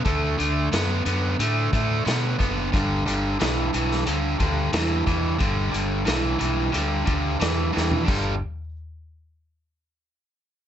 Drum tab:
CC |----------------|----------------|----------------|x---------------|
HH |x-x-x-x-x-x-x-x-|x-x-x-x-x-x-x-x-|x-x-x-x-x-x-x---|----------------|
SD |----o-------o---|----o--o----o---|----o-------o-o-|----------------|
FT |----------------|----------------|---------------o|----------------|
BD |o---------o---o-|o---------o---o-|o---------o-----|o---------------|